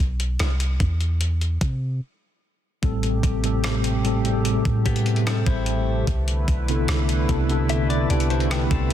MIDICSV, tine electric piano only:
0, 0, Header, 1, 2, 480
1, 0, Start_track
1, 0, Tempo, 810811
1, 1675, Time_signature, 4, 2, 24, 8
1, 5288, End_track
2, 0, Start_track
2, 0, Title_t, "Tine electric piano"
2, 0, Program_c, 0, 4
2, 1671, Note_on_c, 0, 45, 105
2, 1676, Note_on_c, 0, 55, 88
2, 1681, Note_on_c, 0, 60, 87
2, 1686, Note_on_c, 0, 69, 108
2, 1794, Control_c, 0, 64, 127
2, 1942, Note_off_c, 0, 45, 0
2, 1944, Note_off_c, 0, 55, 0
2, 1947, Note_off_c, 0, 60, 0
2, 1949, Note_off_c, 0, 69, 0
2, 2032, Note_on_c, 0, 45, 82
2, 2037, Note_on_c, 0, 55, 74
2, 2041, Note_on_c, 0, 60, 73
2, 2047, Note_on_c, 0, 69, 93
2, 2302, Note_off_c, 0, 45, 0
2, 2305, Note_off_c, 0, 55, 0
2, 2307, Note_off_c, 0, 60, 0
2, 2310, Note_off_c, 0, 69, 0
2, 2393, Note_on_c, 0, 45, 85
2, 2399, Note_on_c, 0, 55, 74
2, 2403, Note_on_c, 0, 60, 78
2, 2409, Note_on_c, 0, 69, 93
2, 2484, Note_off_c, 0, 45, 0
2, 2486, Note_off_c, 0, 55, 0
2, 2489, Note_off_c, 0, 60, 0
2, 2492, Note_off_c, 0, 69, 0
2, 2512, Note_on_c, 0, 45, 75
2, 2517, Note_on_c, 0, 55, 71
2, 2521, Note_on_c, 0, 60, 66
2, 2527, Note_on_c, 0, 68, 61
2, 2559, Note_off_c, 0, 68, 0
2, 2566, Note_on_c, 0, 69, 81
2, 3230, Note_off_c, 0, 45, 0
2, 3233, Note_off_c, 0, 55, 0
2, 3235, Note_off_c, 0, 60, 0
2, 3257, Note_off_c, 0, 69, 0
2, 3603, Control_c, 0, 64, 0
2, 3688, Control_c, 0, 64, 127
2, 3954, Note_on_c, 0, 48, 81
2, 3958, Note_on_c, 0, 59, 80
2, 3962, Note_on_c, 0, 62, 74
2, 3965, Note_on_c, 0, 64, 78
2, 3969, Note_on_c, 0, 69, 92
2, 4223, Note_off_c, 0, 48, 0
2, 4225, Note_off_c, 0, 59, 0
2, 4227, Note_off_c, 0, 62, 0
2, 4229, Note_off_c, 0, 64, 0
2, 4231, Note_off_c, 0, 69, 0
2, 4314, Note_on_c, 0, 48, 83
2, 4317, Note_on_c, 0, 59, 79
2, 4321, Note_on_c, 0, 62, 76
2, 4324, Note_on_c, 0, 64, 77
2, 4328, Note_on_c, 0, 69, 93
2, 4404, Note_off_c, 0, 48, 0
2, 4405, Note_off_c, 0, 59, 0
2, 4408, Note_off_c, 0, 62, 0
2, 4409, Note_off_c, 0, 64, 0
2, 4411, Note_off_c, 0, 69, 0
2, 4434, Note_on_c, 0, 48, 73
2, 4437, Note_on_c, 0, 59, 67
2, 4441, Note_on_c, 0, 62, 68
2, 4445, Note_on_c, 0, 64, 68
2, 4448, Note_on_c, 0, 69, 85
2, 4703, Note_off_c, 0, 48, 0
2, 4705, Note_off_c, 0, 59, 0
2, 4707, Note_off_c, 0, 62, 0
2, 4709, Note_off_c, 0, 64, 0
2, 4711, Note_off_c, 0, 69, 0
2, 4796, Note_on_c, 0, 48, 81
2, 4800, Note_on_c, 0, 59, 68
2, 4804, Note_on_c, 0, 62, 70
2, 4804, Note_on_c, 0, 81, 65
2, 4807, Note_on_c, 0, 64, 74
2, 4811, Note_on_c, 0, 67, 88
2, 5023, Note_off_c, 0, 81, 0
2, 5043, Note_on_c, 0, 79, 69
2, 5154, Note_off_c, 0, 48, 0
2, 5156, Note_off_c, 0, 59, 0
2, 5158, Note_off_c, 0, 62, 0
2, 5160, Note_off_c, 0, 64, 0
2, 5162, Note_off_c, 0, 67, 0
2, 5262, Note_off_c, 0, 79, 0
2, 5288, End_track
0, 0, End_of_file